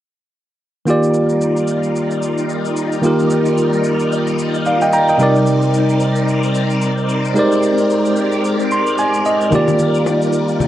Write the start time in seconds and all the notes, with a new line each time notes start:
0.85 D#3 G3 A#3 D#4 F4 G4 A#4 D5, shaker
0.90 D5
1.03 shaker
1.14 shaker
1.29 shaker
1.42 shaker
1.57 shaker
1.68 shaker
1.83 shaker
1.96 shaker
2.11 shaker
2.23 shaker
2.38 shaker
2.49 shaker
2.65 shaker
2.77 shaker
2.92 shaker
3.02 D#3 A#3 F4 G4, shaker
3.07 A#4
3.19 shaker
3.30 shaker
3.46 shaker
3.58 shaker
3.73 shaker
3.84 shaker
4.00 shaker
4.12 shaker
4.27 shaker
4.39 shaker
4.54 shaker
4.66 D5 F5, shaker
4.81 D#5 G5, shaker
4.93 G5 A#5, shaker
5.09 D#5 G5, shaker
5.18 C3 G3 C4 D#4 A#4, shaker
5.23 D5
5.36 shaker
5.47 shaker
5.62 shaker
5.74 shaker
5.89 shaker
6.00 shaker
6.16 shaker
6.28 shaker
6.43 shaker
6.55 shaker
6.70 shaker
6.82 shaker
6.98 shaker
7.09 shaker
7.25 shaker
7.34 G#3 D#4 G4 A#4 C5, shaker
7.39 D5
7.52 shaker
7.63 shaker
7.78 shaker
7.90 shaker
8.06 shaker
8.16 shaker
8.32 shaker
8.45 shaker
8.60 shaker
8.71 C6, shaker
8.87 shaker
8.98 G#5, shaker
9.14 shaker
9.25 D#5, shaker
9.41 shaker
9.50 D#3 G3 A#3 D#4 F4 G4, low conga, shaker
9.55 D5
9.68 low bongo, shaker
9.79 low bongo, shaker
9.94 shaker
10.06 high bongo, shaker
10.22 shaker
10.33 shaker
10.48 shaker
10.60 low conga, shaker